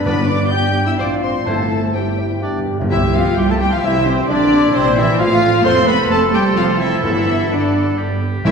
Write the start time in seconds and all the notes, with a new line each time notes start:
Already playing: D4 D5
0.04 G2 B3 D4 B4 D5 B5
0.28 D4 D5 D6
0.51 G4 G5 G6
0.87 E4 E5 E6
0.98 A1 C4 D4 F4 C5 D5 F5 D6
1.22 C4 C5 C6
1.46 G1 G2 A3 C4 E4 A4 C5 E5 A5
1.95 G3 C4 G4 G5
2.19 E4
2.42 G2 B3 D4 G4 D5
2.50 G2
2.58 G2
2.66 G2
2.74 G2
2.79 G2 E4
2.90 C2 E3 G3 C4 E4 G4 E5 C6
3.02 E3 E4
3.14 F3 G3 C4 F4 F5
3.26 E3 E4
3.37 C2 G3 C4 E4 G4 G5
3.48 E3 A3 E4 A4 A5
3.60 G3 C4 G4 G5
3.72 E3 F3 E4 F4 F5
3.83 C2 E3 G3 C4 E4 E5
3.95 E3 E4
4.06 C3 G3 C4 C5
4.18 E3 E4
4.28 A#1 D3 G3 C4 D4 E4 D5
4.41 E3 A#3
4.52 G3 C4
4.64 E3 A#3
4.75 A#1 C3 G3 C4 C5
4.86 E3 A#3
4.97 E3 G3 C4 E4 E5
5.08 E3 A#3
5.13 G5
5.19 A1 F3 A3 C4 F4 F5
5.31 F3 A3
5.43 A3 C4
5.54 F3 A3
5.64 F1 F3 A3 C4 A4 C5 C6
5.77 A3 F4
5.87 F3 B3 C4 B4 B5
5.99 A3 F4
6.09 F1 F3 A3 C4 A4 A5
6.21 A3 F4
6.33 F3 G3 C4 G4 G5
6.46 A3 F4
6.56 F1 F3 C4 F4 F5
6.68 A3 F4
6.80 E3 F3 C4 E4 E5
6.93 A3 F4
7.03 G1 G2 D3 E3 B3 E4 E5 B5
7.16 G3 D4
7.28 D3 B3
7.40 G3 D4
7.51 G1 D3 B3 D4 D5
7.63 G3 D4
7.75 D3 B3
7.86 G3 D4
7.99 G1 D3 B3 G4
8.11 G3 D4
8.23 D3 B3
8.34 G3 D4
8.45 C2 C3 E3 G3 C4 E4 E5 C6